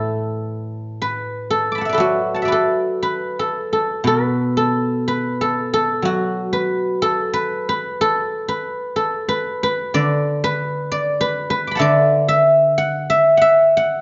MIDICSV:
0, 0, Header, 1, 2, 480
1, 0, Start_track
1, 0, Tempo, 988468
1, 12, Time_signature, 4, 2, 24, 8
1, 972, Tempo, 1023891
1, 2412, Tempo, 983607
1, 2892, Tempo, 974026
1, 4812, Tempo, 934579
1, 6252, Tempo, 978793
1, 6869, End_track
2, 0, Start_track
2, 0, Title_t, "Guzheng"
2, 0, Program_c, 0, 107
2, 0, Note_on_c, 0, 45, 47
2, 0, Note_on_c, 0, 52, 50
2, 0, Note_on_c, 0, 69, 67
2, 0, Note_on_c, 0, 71, 73
2, 487, Note_off_c, 0, 52, 0
2, 491, Note_off_c, 0, 71, 0
2, 493, Note_on_c, 0, 71, 58
2, 729, Note_off_c, 0, 69, 0
2, 731, Note_on_c, 0, 69, 60
2, 834, Note_on_c, 0, 86, 30
2, 850, Note_on_c, 0, 83, 28
2, 864, Note_on_c, 0, 81, 32
2, 880, Note_on_c, 0, 78, 31
2, 900, Note_on_c, 0, 76, 34
2, 920, Note_on_c, 0, 74, 35
2, 933, Note_off_c, 0, 71, 0
2, 935, Note_on_c, 0, 71, 39
2, 942, Note_off_c, 0, 69, 0
2, 944, Note_on_c, 0, 69, 44
2, 959, Note_on_c, 0, 54, 40
2, 971, Note_on_c, 0, 66, 56
2, 1131, Note_off_c, 0, 81, 0
2, 1133, Note_on_c, 0, 81, 28
2, 1138, Note_off_c, 0, 78, 0
2, 1140, Note_on_c, 0, 78, 27
2, 1166, Note_off_c, 0, 76, 0
2, 1168, Note_on_c, 0, 76, 34
2, 1181, Note_off_c, 0, 74, 0
2, 1183, Note_on_c, 0, 74, 35
2, 1194, Note_off_c, 0, 71, 0
2, 1196, Note_on_c, 0, 71, 41
2, 1214, Note_off_c, 0, 69, 0
2, 1216, Note_on_c, 0, 69, 58
2, 1286, Note_off_c, 0, 45, 0
2, 1410, Note_off_c, 0, 86, 0
2, 1450, Note_off_c, 0, 71, 0
2, 1452, Note_on_c, 0, 71, 60
2, 1486, Note_off_c, 0, 83, 0
2, 1623, Note_off_c, 0, 69, 0
2, 1624, Note_on_c, 0, 69, 51
2, 1779, Note_off_c, 0, 69, 0
2, 1781, Note_on_c, 0, 69, 52
2, 1811, Note_off_c, 0, 81, 0
2, 1892, Note_off_c, 0, 78, 0
2, 1927, Note_on_c, 0, 47, 42
2, 1941, Note_off_c, 0, 71, 0
2, 1942, Note_on_c, 0, 71, 69
2, 1975, Note_off_c, 0, 76, 0
2, 2048, Note_off_c, 0, 74, 0
2, 2110, Note_off_c, 0, 66, 0
2, 2174, Note_off_c, 0, 69, 0
2, 2176, Note_on_c, 0, 69, 54
2, 2406, Note_off_c, 0, 54, 0
2, 2412, Note_off_c, 0, 71, 0
2, 2414, Note_on_c, 0, 71, 60
2, 2575, Note_off_c, 0, 69, 0
2, 2577, Note_on_c, 0, 69, 59
2, 2733, Note_off_c, 0, 69, 0
2, 2735, Note_on_c, 0, 69, 63
2, 2876, Note_on_c, 0, 54, 38
2, 2889, Note_on_c, 0, 66, 62
2, 3122, Note_off_c, 0, 71, 0
2, 3124, Note_on_c, 0, 71, 60
2, 3365, Note_off_c, 0, 47, 0
2, 3365, Note_off_c, 0, 69, 0
2, 3367, Note_on_c, 0, 69, 70
2, 3520, Note_off_c, 0, 71, 0
2, 3522, Note_on_c, 0, 71, 64
2, 3694, Note_off_c, 0, 71, 0
2, 3696, Note_on_c, 0, 71, 64
2, 3852, Note_off_c, 0, 69, 0
2, 3854, Note_on_c, 0, 69, 68
2, 4086, Note_off_c, 0, 71, 0
2, 4087, Note_off_c, 0, 66, 0
2, 4088, Note_on_c, 0, 71, 59
2, 4321, Note_off_c, 0, 69, 0
2, 4323, Note_on_c, 0, 69, 56
2, 4327, Note_off_c, 0, 54, 0
2, 4481, Note_off_c, 0, 71, 0
2, 4483, Note_on_c, 0, 71, 68
2, 4652, Note_off_c, 0, 71, 0
2, 4654, Note_on_c, 0, 71, 66
2, 4806, Note_on_c, 0, 50, 40
2, 4807, Note_on_c, 0, 74, 74
2, 5059, Note_off_c, 0, 71, 0
2, 5061, Note_on_c, 0, 71, 71
2, 5304, Note_off_c, 0, 74, 0
2, 5306, Note_on_c, 0, 74, 72
2, 5429, Note_off_c, 0, 69, 0
2, 5454, Note_off_c, 0, 71, 0
2, 5456, Note_on_c, 0, 71, 69
2, 5605, Note_off_c, 0, 71, 0
2, 5607, Note_on_c, 0, 71, 69
2, 5696, Note_on_c, 0, 86, 36
2, 5716, Note_on_c, 0, 83, 40
2, 5736, Note_on_c, 0, 81, 42
2, 5745, Note_on_c, 0, 78, 46
2, 5753, Note_off_c, 0, 50, 0
2, 5756, Note_on_c, 0, 76, 51
2, 5759, Note_on_c, 0, 50, 51
2, 5766, Note_off_c, 0, 74, 0
2, 5768, Note_on_c, 0, 74, 79
2, 6007, Note_off_c, 0, 76, 0
2, 6009, Note_on_c, 0, 76, 71
2, 6260, Note_off_c, 0, 78, 0
2, 6262, Note_on_c, 0, 78, 73
2, 6318, Note_off_c, 0, 86, 0
2, 6402, Note_off_c, 0, 83, 0
2, 6417, Note_off_c, 0, 76, 0
2, 6419, Note_on_c, 0, 76, 71
2, 6470, Note_off_c, 0, 81, 0
2, 6552, Note_off_c, 0, 78, 0
2, 6554, Note_on_c, 0, 78, 52
2, 6573, Note_off_c, 0, 76, 0
2, 6575, Note_on_c, 0, 76, 73
2, 6639, Note_off_c, 0, 71, 0
2, 6695, Note_off_c, 0, 74, 0
2, 6746, Note_off_c, 0, 78, 0
2, 6748, Note_on_c, 0, 78, 69
2, 6869, Note_off_c, 0, 50, 0
2, 6869, Note_off_c, 0, 76, 0
2, 6869, Note_off_c, 0, 78, 0
2, 6869, End_track
0, 0, End_of_file